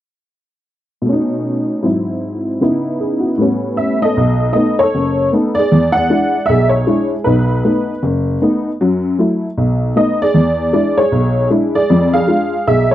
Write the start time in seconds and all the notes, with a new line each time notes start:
1.02 B2 A3
1.09 C#4 D#4
1.83 G#2 F#3 C4 E4
2.61 C#3 B3 D#4 E4
3.00 G#4
3.20 F#4
3.38 A2 G3 B3
3.42 C#4
3.77 E5
4.02 A4 D#5
4.17 B1
4.53 A3 B3 D#4 D#5
4.79 A4 C#5
4.95 F#1
5.33 A3 B3 D#4
5.55 D5
5.59 G#4
5.72 E2
5.92 F#5
5.97 D5
6.10 G#3 D4 E4
6.46 B1 G#4 E5
6.69 C#5
6.87 G#3 D4 E4
7.24 B1 D#4 B4
7.64 A3 B3 D#4
8.03 F#1
8.42 A3 B3 D#4
8.81 F#2 F#3
9.19 F#3 A3 E4
9.57 B1
9.96 A3 B3 D#4 D#5
10.22 G#4 D5
10.34 E2
10.73 G#3 D4 E4 D5
10.98 G#4 C#5
11.12 B1
11.50 G#3 D4 E4
11.75 G#4 D5
11.90 F2 F3
12.13 G#4 F5
12.27 G#3 D4 F4
12.67 B1 G#4 E5
12.91 C#5